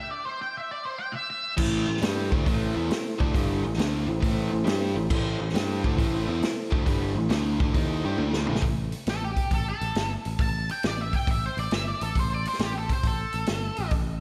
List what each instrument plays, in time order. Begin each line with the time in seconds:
Already playing: lead electric guitar E5
0.11 lead electric guitar D5
0.25 lead electric guitar C5
0.42 lead electric guitar G5
0.57 lead electric guitar E5
0.71 lead electric guitar D5
0.85 lead electric guitar C5
0.98 lead electric guitar G5
1.13 lead electric guitar E5
1.30 lead electric guitar E5
1.57 picked electric bass A1, overdriven electric guitar A2 E3 A3, tonewheel organ E4 A4 C5, kick, crash
1.87 picked electric bass A1, overdriven electric guitar A2 E3
1.97 snare
2.02 picked electric bass G2, overdriven electric guitar G3 D4 G4, snare, open hi-hat
2.31 picked electric bass D2, overdriven electric guitar D3 A3 D4, kick
2.45 picked electric bass A1, overdriven electric guitar A2 E3 A3, kick, open hi-hat
2.74 picked electric bass E2, overdriven electric guitar E3 B3 E4
2.90 muted picked electric bass stroke, muted overdriven electric guitar stroke, snare, open hi-hat
3.19 picked electric bass D2, overdriven electric guitar D3 A3 D4, kick
3.33 picked electric bass G1, overdriven electric guitar G2 D3 G3, kick, open hi-hat
3.64 picked electric bass A1, overdriven electric guitar A2 E3
3.73 snare
3.78 picked electric bass D2, overdriven electric guitar D3 A3 D4, snare, open hi-hat
4.07 picked electric bass A1, overdriven electric guitar A2 E3
4.21 picked electric bass A1, overdriven electric guitar A2 E3 A3, kick, open hi-hat
4.52 picked electric bass A1, overdriven electric guitar A2 E3
4.64 picked electric bass G2, overdriven electric guitar G3 D4 G4, snare, open hi-hat
4.95 picked electric bass A1, overdriven electric guitar A2 E3
5.10 picked electric bass A1, overdriven electric guitar A2 E3 A3, tonewheel organ E4 A4 C5, kick, crash
5.39 picked electric bass A1, overdriven electric guitar A2 E3
5.49 snare
5.54 picked electric bass G2, overdriven electric guitar G3 D4 G4, snare, open hi-hat
5.84 picked electric bass D2, overdriven electric guitar D3 A3 D4, kick
5.97 picked electric bass A1, overdriven electric guitar A2 E3 A3, kick, open hi-hat
6.27 picked electric bass E2, overdriven electric guitar E3 B3 E4
6.41 muted picked electric bass stroke, muted overdriven electric guitar stroke, snare, open hi-hat
6.71 picked electric bass D2, overdriven electric guitar D3 A3 D4, kick
6.86 picked electric bass G1, overdriven electric guitar G2 D3 G3, kick, open hi-hat
7.15 picked electric bass A1, overdriven electric guitar A2 E3
7.29 picked electric bass D2, overdriven electric guitar D3 A3 D4, snare, open hi-hat
7.60 picked electric bass D2, overdriven electric guitar D3 A3 D4, kick
7.74 picked electric bass D#2, overdriven electric guitar D#3 A#3 D#4, kick, open hi-hat
8.04 picked electric bass G2, overdriven electric guitar G3 D4 G4
8.18 picked electric bass D2, overdriven electric guitar D3 A3 D4, high tom
8.33 snare
8.47 picked electric bass A1, overdriven electric guitar A2 E3 A3, mid tom
8.55 snare
8.61 picked electric bass A1, kick, open hi-hat
8.92 open hi-hat
9.07 picked electric bass A1, lead electric guitar A4, snare, open hi-hat
9.24 lead electric guitar G4
9.37 kick, open hi-hat
9.51 picked electric bass A1, lead electric guitar A4, kick, open hi-hat
9.69 lead electric guitar A4
9.81 picked electric bass A1, open hi-hat
9.95 picked electric bass G1, snare, open hi-hat
10.25 picked electric bass A1, open hi-hat
10.39 picked electric bass A1, lead electric guitar A5, kick, open hi-hat
10.69 lead electric guitar G5, open hi-hat
10.83 picked electric bass A1, lead electric guitar D5, snare, open hi-hat
11.01 lead electric guitar E5
11.13 lead electric guitar G5, kick, open hi-hat
11.27 picked electric bass A1, lead electric guitar E5, kick, open hi-hat
11.46 lead electric guitar C5
11.57 picked electric bass A1, lead electric guitar D5, open hi-hat
11.71 picked electric bass G1, lead electric guitar E5, snare, open hi-hat
11.88 lead electric guitar D5
12.01 picked electric bass A1, lead electric guitar A4, open hi-hat
12.15 picked electric bass A1, kick, open hi-hat
12.20 lead electric guitar C5
12.34 lead electric guitar D5
12.45 lead electric guitar C5, open hi-hat
12.53 snare
12.59 picked electric bass A1, lead electric guitar G4, snare, open hi-hat
12.78 lead electric guitar A4
12.89 lead electric guitar C5, kick, open hi-hat
13.03 picked electric bass A1, lead electric guitar A4, kick, open hi-hat
13.33 picked electric bass A1, open hi-hat
13.46 picked electric bass G1, snare, open hi-hat
13.77 picked electric bass A1, open hi-hat
13.91 picked electric bass A1, kick, open hi-hat